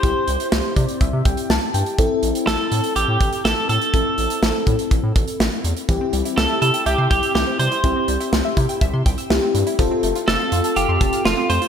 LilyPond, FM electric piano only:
\new Staff \with { instrumentName = "FM electric piano" } { \time 4/4 \key c \major \tempo 4 = 123 << { r4. d''8 e''8 g''8 a''8 g''8 | r1 | r1 | r1 |
r1 | r1 | } \\ { <c' e' g'>1 | <c' e' a'>1 | <c' e' a'>1 | <c' e' g'>1 |
<c' e' g'>2. <c' e' g'>4 | <c' f' a'>1 | } >> }